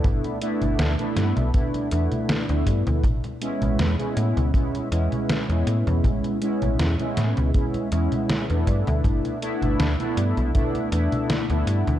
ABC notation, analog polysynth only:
X:1
M:4/4
L:1/16
Q:"Swing 16ths" 1/4=80
K:A
V:1 name="Analog polysynth"
[A,B,DE]2 [A,B,DE]3 [A,B,DE]3 [A,B,DE]2 [A,B,DE]3 [A,B,DE]3 | z2 [G,B,CE]3 [G,B,CE]3 [G,B,CE]2 [G,B,CE]3 [G,B,CE]3- | [G,B,CE]2 [G,B,CE]3 [G,B,CE]3 [G,B,CE]2 [G,B,CE]3 [A,B,DE]3- | [A,B,DE]2 [A,B,DE]3 [A,B,DE]3 [A,B,DE]2 [A,B,DE]3 [A,B,DE]3 |]